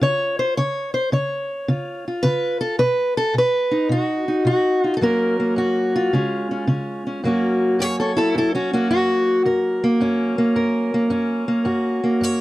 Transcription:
Already playing: C#4 F4
0.01 C#3 C#5
0.39 C5
0.57 C#3 C#5
0.94 C5
1.12 C#3 C#5
1.68 C#3 F4
2.08 F4
2.23 C#3 B4
2.61 A4
2.79 B2 B4
3.17 A4
3.34 B2
3.38 B4
3.71 D#4
3.89 B2 F#4
4.28 D#4
4.45 B2 F#4
4.84 D#4 F4
4.97 A4
5.01 F#2 F#3 A#3 C#4 A#4
5.40 A#3
5.56 F#2 F#4
5.96 F4
6.13 C#3 G#3 C#4
6.51 C#4
6.67 C#3 C#4
7.07 C#4
7.24 F#2 F#3 A#3 C#4 F#4
7.79 F#2 A4 C#5
8.00 A4 C#5
8.17 E4 A4
8.34 F#2 E4 A4
8.55 C#4 F#4
8.73 A#3 C#4 F#4
8.90 F#2 F#4
9.45 F#2 A#4
9.84 A#3
10.00 F#2 C#4
10.38 A#3
10.56 F#2 A#4
10.94 A#3
11.10 F#2 C#4
11.48 A#3
11.65 F#2 F#4
12.04 A#3
12.21 F#2 C#5

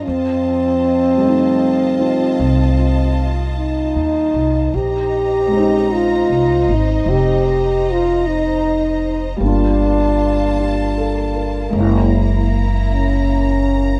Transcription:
0.07 F2 C4 F4 D#5 A5
1.17 G3 A3
1.25 C4 D#4
1.98 C4 D#4 F4
2.40 C2
3.58 D#4
3.95 D#2
4.34 C2
4.72 A#1 D#4 G4 C5 D#5 A#5
5.47 G#3 C4
5.54 C#4 D#4
5.94 F4
6.30 C2
6.68 G#1
6.74 D#4
7.06 F1 C4 A#5
7.10 G4
7.91 F4
8.27 D#4
9.36 G1 G3
9.41 A#3 D4 F4 A5
9.46 D4 F4
10.59 G4
10.98 A4
11.36 A#4
11.69 F#1 G#3 A#3
11.75 C#4 E4 A#5
11.80 E4
12.93 C#4

